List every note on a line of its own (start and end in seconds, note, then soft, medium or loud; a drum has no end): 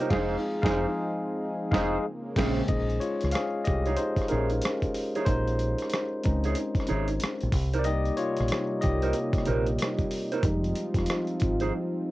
0.00 0.12 G3 soft
0.00 0.12 A#3 soft
0.00 0.11 D#4 soft
0.00 0.11 D#4 medium
0.00 0.13 F4 medium
0.00 0.12 G4 medium
0.00 0.12 A#4 medium
0.00 0.11 A#4 medium
0.00 0.11 C5 medium
0.00 0.12 C#5 medium
0.00 0.12 D#5 medium
0.00 0.12 G5 medium
0.10 0.35 F1 medium
0.10 2.02 F3 medium
0.10 0.34 G#3 medium
0.10 2.02 C4 medium
0.10 2.02 D#4 medium
0.10 0.34 D#4 medium
0.10 0.36 D#4 medium
0.10 2.02 G#4 medium
0.10 0.34 G#4 medium
0.10 0.35 G#4 medium
0.10 0.35 C5 loud
0.10 0.33 F5 medium
0.10 kick loud
0.10 snare medium
0.10 crash medium
0.62 0.84 F1 medium
0.62 0.84 G#3 medium
0.62 0.84 D#4 medium
0.62 0.84 G#4 medium
0.62 0.85 G#4 medium
0.62 0.85 C5 medium
0.62 0.83 F5 medium
0.62 kick loud
0.62 snare medium
0.66 0.85 D#4 medium
1.71 1.96 F1 medium
1.71 1.95 G#3 medium
1.71 1.96 D#4 medium
1.71 1.96 G#4 medium
1.71 1.97 C5 medium
1.71 1.95 F5 medium
1.71 kick loud
1.71 snare loud
2.03 2.68 C#3 medium
2.03 2.68 G#3 medium
2.03 2.68 A#3 medium
2.36 2.60 A#1 loud
2.36 2.60 C#3 medium
2.36 2.60 G#3 medium
2.36 2.60 C4 medium
2.36 2.61 C#4 medium
2.36 2.61 G#4 medium
2.36 2.60 C5 medium
2.36 kick medium
2.36 snare medium
2.36 crash medium
2.68 2.98 A#1 loud
2.68 3.61 G#3 soft
2.68 3.62 C#4 soft
2.68 3.62 D#4 medium
2.68 2.99 G#4 medium
2.68 3.61 C5 soft
2.68 3.02 D#5 medium
2.68 kick loud
2.68 closed hi-hat medium
2.90 closed hi-hat soft
3.00 3.31 F4 medium
3.00 3.34 C#5 medium
3.00 closed hi-hat medium
3.21 3.33 C#2 medium
3.21 cross-stick soft
3.21 closed hi-hat medium
3.31 3.64 G#4 medium
3.31 3.66 F5 medium
3.31 cross-stick loud
3.31 closed hi-hat medium
3.64 3.81 G4 medium
3.64 3.79 D#5 medium
3.64 kick medium
3.64 closed hi-hat medium
3.69 3.96 C2 medium
3.86 3.98 D#4 soft
3.86 3.98 G#4 soft
3.86 3.98 C#5 medium
3.86 closed hi-hat soft
3.97 4.28 D#4 medium
3.97 4.27 C5 medium
3.97 closed hi-hat medium
4.17 muted fingered electric bass stroke soft
4.17 kick medium
4.17 closed hi-hat soft
4.22 cross-stick soft
4.28 4.60 A#1 medium
4.28 4.91 C#4 medium
4.28 4.50 D#4 medium
4.28 4.50 G#4 medium
4.28 4.90 A#4 medium
4.28 4.50 C#5 medium
4.28 closed hi-hat medium
4.50 closed hi-hat soft
4.62 cross-stick loud
4.62 closed hi-hat medium
4.82 kick medium
4.82 closed hi-hat soft
4.95 open hi-hat soft
5.15 5.27 D#4 medium
5.15 5.27 G#4 medium
5.15 5.27 C#5 medium
5.15 closed hi-hat soft
5.25 5.74 A#1 medium
5.25 5.88 D#4 medium
5.25 5.86 C5 loud
5.25 kick loud
5.25 closed hi-hat medium
5.48 closed hi-hat soft
5.59 closed hi-hat medium
5.78 cross-stick soft
5.78 closed hi-hat medium
5.90 cross-stick loud
5.90 closed hi-hat medium
6.23 6.54 C#2 medium
6.23 7.16 G#3 medium
6.23 7.17 C4 soft
6.23 7.17 C#4 soft
6.23 7.17 D#4 medium
6.23 kick medium
6.23 closed hi-hat medium
6.44 6.56 D#4 soft
6.44 6.56 G#4 medium
6.44 6.56 C#5 medium
6.44 closed hi-hat soft
6.55 closed hi-hat medium
6.75 muted fingered electric bass stroke soft
6.75 kick medium
6.75 closed hi-hat soft
6.80 cross-stick soft
6.87 7.18 G#1 medium
6.87 7.08 D#4 medium
6.87 7.08 G#4 medium
6.87 7.08 C#5 medium
6.87 closed hi-hat medium
7.08 closed hi-hat soft
7.20 cross-stick loud
7.20 closed hi-hat medium
7.41 7.52 A#1 medium
7.41 closed hi-hat soft
7.52 8.10 C2 medium
7.52 kick loud
7.52 open hi-hat soft
7.74 7.85 D#4 medium
7.74 7.85 A#4 medium
7.74 7.85 C5 medium
7.74 closed hi-hat soft
7.79 7.85 D5 medium
7.84 10.40 C3 medium
7.84 10.40 G3 medium
7.84 10.39 G3 medium
7.84 10.41 A#3 medium
7.84 10.39 A#3 soft
7.84 10.40 D#4 medium
7.84 8.16 G4 medium
7.84 8.18 D#5 loud
7.84 closed hi-hat medium
8.06 closed hi-hat soft
8.17 8.78 F4 medium
8.17 8.84 C#5 medium
8.17 closed hi-hat medium
8.37 8.49 A#1 medium
8.37 cross-stick soft
8.37 closed hi-hat soft
8.48 cross-stick loud
8.48 closed hi-hat medium
8.81 9.12 C2 medium
8.81 12.11 G4 medium
8.81 12.11 D#5 medium
8.81 kick medium
8.81 closed hi-hat medium
9.02 9.14 D#4 medium
9.02 9.14 A#4 medium
9.02 9.14 C5 medium
9.02 closed hi-hat soft
9.13 closed hi-hat medium
9.33 muted fingered electric bass stroke soft
9.33 kick medium
9.33 closed hi-hat soft
9.38 cross-stick soft
9.45 9.76 A#1 medium
9.45 9.66 D#4 medium
9.45 9.66 A#4 medium
9.45 9.66 C5 medium
9.45 closed hi-hat medium
9.67 closed hi-hat soft
9.79 cross-stick loud
9.79 closed hi-hat loud
9.99 kick medium
9.99 closed hi-hat soft
10.11 open hi-hat soft
10.32 10.43 D#4 medium
10.32 10.43 A#4 medium
10.32 10.43 C5 medium
10.32 closed hi-hat medium
10.43 10.72 F1 loud
10.43 12.11 F3 medium
10.43 12.11 G3 medium
10.43 12.11 G#3 soft
10.43 12.11 C4 medium
10.43 12.11 D#4 medium
10.43 12.11 F4 medium
10.43 kick loud
10.43 closed hi-hat medium
10.64 closed hi-hat soft
10.75 closed hi-hat medium
10.94 11.06 F1 medium
10.94 kick medium
10.94 closed hi-hat medium
10.98 cross-stick soft
11.06 cross-stick medium
11.06 closed hi-hat medium
11.27 closed hi-hat soft
11.40 11.70 G#1 medium
11.40 kick medium
11.40 closed hi-hat medium
11.60 11.72 D#4 medium
11.60 11.72 G#4 medium
11.60 11.72 C5 medium
11.60 closed hi-hat soft